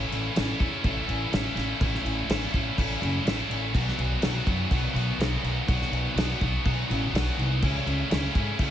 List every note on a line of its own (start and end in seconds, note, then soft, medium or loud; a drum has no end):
0.00 0.83 A2 loud
0.00 0.84 E3 medium
0.00 0.34 A3 loud
0.00 0.35 C#4 medium
0.00 0.36 E4 loud
0.00 0.37 A4 loud
0.11 0.27 A1 medium
0.11 crash medium
0.35 0.51 A1 loud
0.35 0.62 A3 medium
0.35 0.61 C#4 medium
0.35 0.60 E4 medium
0.35 0.59 A4 medium
0.35 snare loud
0.35 crash medium
0.59 0.76 E2 medium
0.59 0.83 A3 medium
0.59 0.84 C#4 medium
0.59 0.84 E4 medium
0.59 0.85 A4 medium
0.59 kick medium
0.59 crash medium
0.84 1.00 A1 medium
0.84 1.32 A2 medium
0.84 1.32 E3 medium
0.84 1.08 A3 medium
0.84 1.07 C#4 loud
0.84 1.06 E4 loud
0.84 1.05 A4 loud
0.84 kick loud
0.84 crash medium
1.06 1.23 A1 loud
1.06 1.31 A3 medium
1.06 1.32 C#4 medium
1.06 1.32 E4 medium
1.06 1.33 A4 medium
1.06 crash medium
1.32 1.48 A1 loud
1.32 1.80 A3 medium
1.32 1.82 C#4 medium
1.32 1.82 E4 medium
1.32 1.82 A4 medium
1.32 snare loud
1.32 crash medium
1.55 1.71 A1 medium
1.55 snare soft
1.55 crash medium
1.80 1.97 A1 loud
1.80 2.53 A2 medium
1.80 2.53 E3 loud
1.80 2.27 A3 medium
1.80 2.28 C#4 loud
1.80 2.29 E4 loud
1.80 2.30 A4 loud
1.80 kick loud
1.80 crash medium
1.95 snare soft
2.05 2.20 A1 medium
2.05 crash medium
2.29 2.44 A1 medium
2.29 2.54 A3 medium
2.29 2.53 C#4 medium
2.29 2.52 E4 medium
2.29 2.51 A4 medium
2.29 snare loud
2.29 crash medium
2.52 2.69 A1 medium
2.52 2.77 A3 medium
2.52 2.78 C#4 medium
2.52 2.78 E4 medium
2.52 2.79 A4 medium
2.52 kick medium
2.52 crash medium
2.78 2.94 A1 medium
2.78 3.26 A2 medium
2.78 3.26 E3 loud
2.78 3.02 A3 medium
2.78 3.02 C#4 loud
2.78 3.01 E4 medium
2.78 2.99 A4 loud
2.78 kick loud
2.78 crash medium
3.01 3.17 F#1 medium
3.01 3.23 A3 medium
3.01 3.25 C#4 medium
3.01 3.25 E4 medium
3.01 3.26 A4 medium
3.01 crash medium
3.25 3.41 A1 medium
3.25 3.72 A3 medium
3.25 3.73 C#4 medium
3.25 3.73 E4 medium
3.25 3.73 A4 medium
3.25 snare loud
3.25 crash medium
3.49 3.75 A1 medium
3.49 crash medium
3.73 3.90 B1 medium
3.73 4.70 B2 medium
3.73 4.20 D#3 medium
3.73 4.22 F#3 loud
3.73 4.23 B3 loud
3.73 4.23 F#4 loud
3.73 kick loud
3.73 crash medium
3.89 snare soft
3.98 4.14 B1 medium
3.98 crash medium
4.22 4.38 B1 medium
4.22 4.70 D#3 medium
4.22 4.49 F#3 medium
4.22 4.48 B3 medium
4.22 4.46 F#4 medium
4.22 snare loud
4.22 crash medium
4.47 4.63 F#2 loud
4.47 4.71 F#3 medium
4.47 4.71 B3 medium
4.47 4.72 F#4 medium
4.47 kick medium
4.47 crash medium
4.71 4.87 B1 medium
4.71 5.19 B2 medium
4.71 5.17 D#3 medium
4.71 4.96 F#3 loud
4.71 4.94 B3 loud
4.71 4.93 F#4 medium
4.71 kick loud
4.71 crash medium
4.93 5.10 B1 loud
4.93 5.17 F#3 medium
4.93 5.18 B3 medium
4.93 5.19 F#4 medium
4.93 crash medium
5.18 5.34 B1 medium
5.18 5.66 D#3 medium
5.18 5.67 F#3 medium
5.18 5.67 B3 medium
5.18 5.68 F#4 medium
5.18 snare loud
5.18 crash medium
5.43 5.59 B1 medium
5.43 crash medium
5.67 5.84 B1 medium
5.67 6.40 B2 medium
5.67 6.15 D#3 medium
5.67 6.16 F#3 medium
5.67 6.16 B3 medium
5.67 6.17 F#4 loud
5.67 kick loud
5.67 crash medium
5.82 snare soft
5.91 6.07 B1 medium
5.91 crash medium
6.15 6.31 B1 medium
6.15 6.63 D#3 medium
6.15 6.42 F#3 medium
6.15 6.41 B3 medium
6.15 6.40 F#4 medium
6.15 snare loud
6.15 crash medium
6.41 6.57 B1 medium
6.41 6.64 F#3 medium
6.41 6.64 B3 medium
6.41 6.65 F#4 medium
6.41 kick medium
6.41 crash medium
6.63 6.81 B1 medium
6.63 7.12 B2 loud
6.63 7.12 D#3 loud
6.63 6.90 F#3 medium
6.63 6.88 B3 loud
6.63 6.87 F#4 loud
6.63 kick loud
6.63 crash medium
6.88 7.05 A1 loud
6.88 7.13 F#3 medium
6.88 7.14 B3 medium
6.88 7.15 F#4 medium
6.88 crash medium
7.12 7.28 B1 medium
7.12 7.60 D#3 medium
7.12 7.61 F#3 medium
7.12 7.61 B3 medium
7.12 7.61 F#4 medium
7.12 snare loud
7.12 crash medium
7.37 7.63 C2 loud
7.37 crash medium
7.62 7.79 C#2 loud
7.62 8.08 C#3 medium
7.62 8.10 A3 medium
7.62 8.10 C#4 loud
7.62 8.12 E4 loud
7.62 kick loud
7.62 crash medium
7.86 8.02 C#2 loud
7.86 crash medium
8.10 8.26 C#2 medium
8.10 8.58 C#3 medium
8.10 8.36 A3 medium
8.10 8.35 C#4 medium
8.10 8.35 E4 loud
8.10 snare loud
8.10 crash medium
8.35 8.51 G#2 medium
8.35 8.59 A3 medium
8.35 8.60 C#4 medium
8.35 8.60 E4 medium
8.35 kick medium
8.35 crash medium
8.59 8.71 C#2 medium
8.59 8.71 C#3 medium
8.59 8.71 A3 loud
8.59 8.71 C#4 loud
8.59 8.71 E4 medium
8.59 kick loud
8.59 crash medium